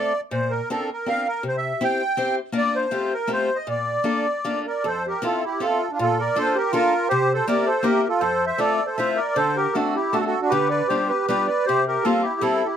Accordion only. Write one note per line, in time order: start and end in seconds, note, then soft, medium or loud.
0.00 0.20 D5 medium
0.32 0.52 C5 medium
0.50 0.69 A#4 medium
0.70 0.90 A4 medium
0.93 1.09 A#4 medium
1.09 1.28 F5 loud
1.28 1.44 A#4 medium
1.48 1.56 C5 medium
1.57 1.84 E5 medium
1.84 2.35 G5 loud
2.57 2.77 D5 loud
2.75 3.14 C5 medium
3.13 3.31 A#4 medium
3.33 3.57 C5 loud
3.56 3.69 D#5 medium
3.70 4.62 D5 medium
4.66 4.83 A#4 medium
4.66 4.86 D5 medium
4.85 5.03 A4 medium
4.85 5.06 C5 medium
5.07 5.23 G4 medium
5.07 5.26 A#4 medium
5.24 5.42 F4 medium
5.24 5.45 A4 medium
5.44 5.60 E4 medium
5.44 5.63 G4 medium
5.61 5.88 F4 medium
5.61 5.92 A4 medium
5.91 5.99 D4 soft
5.91 5.98 F4 medium
6.00 6.17 F4 medium
6.00 6.21 A4 loud
6.19 6.35 A#4 medium
6.19 6.38 D5 medium
6.37 6.55 A4 medium
6.37 6.57 C5 loud
6.55 6.72 G4 medium
6.55 6.72 A#4 medium
6.72 7.07 F4 medium
6.72 7.08 A#4 loud
7.08 7.32 G4 medium
7.08 7.33 C5 loud
7.34 7.46 A4 medium
7.34 7.48 C5 medium
7.47 7.66 A#4 medium
7.47 7.68 D5 medium
7.66 7.83 A4 medium
7.66 7.85 C5 medium
7.83 8.08 G4 medium
7.83 8.08 A#4 loud
8.08 8.21 F4 medium
8.08 8.19 A4 medium
8.20 8.45 A4 medium
8.20 8.45 C5 loud
8.47 8.59 C5 medium
8.47 8.60 E5 medium
8.59 8.83 A4 medium
8.59 8.86 D5 medium
8.86 8.98 A4 medium
8.86 8.97 C5 medium
8.98 9.17 C5 medium
8.98 9.19 E5 medium
9.16 9.34 A#4 medium
9.16 9.37 D5 medium
9.36 9.56 A4 medium
9.36 9.57 C5 loud
9.56 9.74 G4 medium
9.56 9.76 A#4 medium
9.73 9.94 F#4 medium
9.73 9.95 A4 medium
9.96 10.13 E4 medium
9.96 10.15 G4 medium
10.13 10.21 F#4 medium
10.13 10.19 A4 medium
10.20 10.25 A4 medium
10.26 10.39 F#4 medium
10.26 10.41 A4 medium
10.41 10.51 D4 soft
10.41 10.52 F#4 medium
10.49 10.70 G4 medium
10.49 10.68 B4 medium
10.70 10.88 B4 medium
10.70 10.90 D5 medium
10.88 11.08 G4 medium
10.88 11.10 C5 medium
11.09 11.26 G4 medium
11.09 11.26 B4 medium
11.27 11.46 G4 medium
11.27 11.47 B4 medium
11.47 11.65 B4 medium
11.47 11.66 D5 medium
11.66 11.85 G4 medium
11.66 11.84 C5 loud
11.88 12.04 G4 medium
11.88 12.05 A#4 medium
12.03 12.23 F4 medium
12.03 12.22 A4 medium
12.22 12.40 E4 medium
12.22 12.42 G4 medium
12.41 12.65 E4 medium
12.41 12.67 A4 medium
12.65 12.77 E4 medium
12.65 12.77 G4 medium